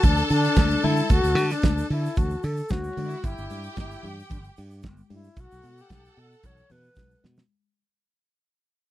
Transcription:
Already playing: A4 A5
0.03 D2 D4, kick, closed hi-hat, muted conga, low conga, shaker
0.17 shaker
0.30 D3 D4, open hi-hat, shaker
0.44 shaker
0.56 D2, kick, snare, closed hi-hat, high conga, shaker
0.70 shaker
0.82 D3 E4, open hi-hat, high conga
0.97 shaker
1.09 D2 F#4, kick, closed hi-hat, muted conga, shaker
1.23 D2, shaker
1.35 D3, open hi-hat, muted conga, shaker
1.50 D4, snare, shaker
1.62 D2, kick, snare, closed hi-hat, high conga, shaker
1.78 shaker
1.90 D3 E4, open hi-hat
2.05 shaker
2.16 D2 F#4, kick, closed hi-hat, muted conga, low conga, shaker
2.30 shaker
2.43 D3 A4, open hi-hat, shaker
2.57 shaker
2.69 D2 F#4, kick, snare, closed hi-hat, high conga, shaker
2.84 shaker
2.89 C#4 C#5
2.97 D3 D4 D5, open hi-hat, high conga
3.07 E4 E5, shaker
3.16 F#4 F#5
3.24 G1 E4 G4 G5, kick, closed hi-hat, shaker
3.38 G1, shaker
3.50 G2, open hi-hat, muted conga, shaker
3.63 shaker
3.76 G1 E4, kick, snare, closed hi-hat, high conga, shaker
3.91 shaker
4.03 G2, open hi-hat, low conga
4.19 shaker
4.30 G1 D4, kick, closed hi-hat, muted conga, low conga, shaker
4.44 shaker
4.57 G2, open hi-hat, shaker
4.70 shaker
4.82 G1, kick, snare, closed hi-hat, high conga, shaker
4.97 shaker
5.10 G2 E4, open hi-hat, high conga
5.24 shaker
5.36 B1 F#4 A4 F#5, kick, closed hi-hat, muted conga, shaker
5.51 B1, shaker
5.62 B2, open hi-hat, muted conga, shaker
5.78 G4, shaker
5.89 B1, kick, snare, closed hi-hat, high conga, shaker
6.05 shaker
6.17 B2 A4, open hi-hat
6.32 shaker
6.43 B1 C#5, kick, closed hi-hat, muted conga, low conga, shaker
6.57 shaker
6.70 B2 B4, open hi-hat, low conga, shaker
6.83 shaker
6.96 B1, kick, snare, high conga, shaker
7.11 shaker
7.24 B2, snare, high conga
7.37 snare, shaker

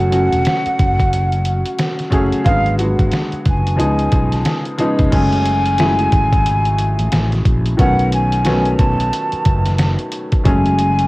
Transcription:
Already playing: F#1 C#3 F#3 A3 C#4 F#4 F#5
0.10 C#3 F#3 A3 C#4 F#4, closed hi-hat
0.32 E1, closed hi-hat
0.45 snare, closed hi-hat
0.66 muted fretless electric bass stroke, closed hi-hat
0.79 F#1, kick, closed hi-hat
0.99 kick, closed hi-hat
1.13 closed hi-hat
1.32 closed hi-hat
1.45 closed hi-hat
1.66 closed hi-hat
1.79 snare, closed hi-hat
1.99 snare, closed hi-hat
2.10 F#1 C#3 F#3 A3 C#4 G#4, kick, closed hi-hat
2.32 closed hi-hat
2.44 G#1 D3 F#3 G#3 B3 F#4 F5, kick, closed hi-hat
2.66 closed hi-hat
2.78 D3 F#3 G#3 B3 F#4 F#5, closed hi-hat
2.99 G#1, kick, closed hi-hat
3.12 snare, closed hi-hat
3.32 muted fretless electric bass stroke, closed hi-hat
3.46 F#1 G#5, kick, closed hi-hat
3.67 closed hi-hat
3.76 C#2 C#3 F3 G#3 B3 D#4, closed hi-hat
3.99 closed hi-hat
4.12 B1, kick, closed hi-hat
4.32 snare, closed hi-hat
4.45 snare, closed hi-hat
4.65 closed hi-hat
4.78 C#3 F3 G#3 B3 D#4, closed hi-hat
4.99 F1, kick, closed hi-hat
5.10 F#1 C#3 F#3 G#3 A3 C#4 G#5, kick, closed hi-hat, crash
5.33 closed hi-hat
5.46 closed hi-hat
5.66 closed hi-hat
5.78 C#3 F#3 G#3 A3 E4, snare, closed hi-hat
5.99 closed hi-hat
6.12 G#1, kick, closed hi-hat
6.33 kick, closed hi-hat
6.46 closed hi-hat
6.65 closed hi-hat
6.79 closed hi-hat
6.99 A1, closed hi-hat
7.12 A1, snare, closed hi-hat
7.32 snare, closed hi-hat
7.45 A#1, kick, closed hi-hat
7.66 closed hi-hat
7.77 B1 D#3 F#3 A3 B3 C#4 F#5, kick, closed hi-hat
7.99 closed hi-hat
8.12 G#5, closed hi-hat
8.32 closed hi-hat
8.45 D#3 F#3 A3 B3 C#4, snare, closed hi-hat
8.65 closed hi-hat
8.77 B1 A5, kick, closed hi-hat
9.00 closed hi-hat
9.13 closed hi-hat
9.32 muted fretless electric bass stroke, closed hi-hat
9.45 F#1, kick, closed hi-hat
9.66 snare, closed hi-hat
9.78 snare, closed hi-hat
9.99 closed hi-hat
10.12 closed hi-hat
10.32 kick, closed hi-hat
10.43 F#1 C#3 F#3 G#3 A3 C#4 G#5, kick, closed hi-hat
10.66 closed hi-hat
10.79 closed hi-hat
10.99 closed hi-hat

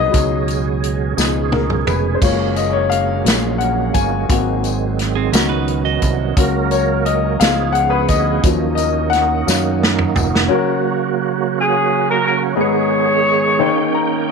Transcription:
Already playing: C2 B2 F#3 A#3 B3 D#4 F#4 G#4 A#4 B4 D#5
0.11 C#2 F#3 B3 C#4 D#4, kick, closed hi-hat, tambourine
0.48 closed hi-hat, tambourine
0.84 closed hi-hat
1.17 C#2 F3 G#3 B3 D#4 G#4, snare, tambourine
1.52 A#4, high tom
1.70 mid tom
1.87 F1 B4, mid tom, tambourine
2.15 C5
2.22 F#1 F#3 G#3 A#3 F4 C#5, kick, tambourine, crash
2.56 D#5, closed hi-hat, tambourine
2.73 C#5
2.90 F5, closed hi-hat
3.24 A#1 G#3 A#3 F4, closed hi-hat, tambourine
3.28 snare
3.58 F#5, closed hi-hat
3.94 G1 G#5, kick, closed hi-hat, tambourine
4.29 G#1 D#3 G#3 A#3 C4 F#4, kick, closed hi-hat, tambourine
4.64 closed hi-hat, tambourine
4.99 snare, closed hi-hat
5.15 C4 G#4
5.32 C#2 B3 C#4 D#4 F#4 A#4, snare, closed hi-hat, tambourine
5.49 D#4 B4
5.68 closed hi-hat
5.85 F#4 D#5
6.02 C2, kick, closed hi-hat, tambourine
6.36 C#2 F#3 A#3 C#4 F#4 A#4, kick, closed hi-hat, tambourine
6.71 C#5, closed hi-hat, tambourine
7.05 D#5, closed hi-hat
7.40 C#2 F3 B3 D#4 F4 G#4 F5, snare, closed hi-hat, tambourine
7.72 F#5, closed hi-hat
7.90 B4
8.08 D2 D#5, kick, closed hi-hat, tambourine
8.43 D#2 D#3 F3 F#3 A#3 C#4 D#4, kick, closed hi-hat, tambourine
8.75 D#5, closed hi-hat, tambourine
9.10 F#5, closed hi-hat
9.14 snare
9.46 F#2 F#3 C#4 F5, snare, tambourine
9.83 snare
9.99 mid tom
10.15 F1, floor tom, tambourine
10.35 snare
10.48 C#3 F#3 A#3 C#4 F#4 A#4
11.58 C#4 G#4
12.10 A#4
12.26 A#4
12.56 G#2 D#3 G#3 B3 D#4 G#4 B4
12.60 G#4 C#5
13.59 D#3 A#3 C#4 D#4 C5 G5
13.66 C#5
13.95 A#5

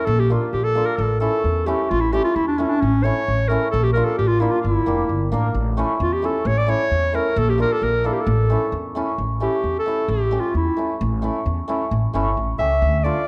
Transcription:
0.05 A#1 A4
0.19 G4
0.30 A#3 D4 F4
0.53 A#1 G4
0.64 A4
0.75 A#3 D4 F4
0.86 A#4
0.97 A1 A4
1.20 A3 C#4 E4 A4
1.44 E2
1.66 A3 C#4 E4 G4
1.90 A1 F4
2.00 E4
2.12 A3 C#4 E4 G4
2.24 F4
2.35 E2 E4
2.48 D4
2.58 A3 C#4 E4
2.70 D4
2.81 A1 C#4
3.04 A3 C#4 E4 C#5
3.28 A1
3.48 A3 C#4 E4 A#4
3.71 A#1 A4
3.83 G4
3.93 A#3 D4 F4 A#4
4.05 A4
4.18 A1 G4
4.28 F4
4.40 A#3 D4 E4 F4
4.51 F4
4.62 G1 E4
4.86 F1 A#3 D4 G4
5.09 G1
5.32 A1 A#3 D4 A#4
5.54 A1
5.77 A3 C#4 E4
6.00 E2 F4
6.13 G4
6.22 A3 C#4 E4 A4
6.45 A1 C#5
6.58 D5
6.67 A3 C#4 E4 C#5
6.91 E2
7.13 A3 C#4 E4 A#4
7.36 A#1 A4
7.49 G4
7.58 A#3 D4 F4 A#4
7.73 A4
7.82 A#1 A#4
8.04 A#3 D4 E4 A4
8.13 G4
8.21 A4
8.27 A1
8.50 A3 C#4 E4
8.72 E2
8.95 A3 C#4 E4
9.18 A1
9.40 A3 C#4 E4 G4
9.64 E2
9.79 A4
9.86 A3 C#4 E4
10.08 A1 G4
10.31 A3 C#4 G4
10.40 F4
10.54 E2 E4
10.77 A3 C#4 E4
11.01 A1
11.22 A3 C#4 E4
11.46 E2
11.68 A3 C#4 E4
11.91 A1
12.13 G1 A3 C#4 E4
12.37 A1
12.58 C#2 A3 C#4 G4 E5
12.82 D2
12.99 E5
13.04 A3 D4 F4 D5

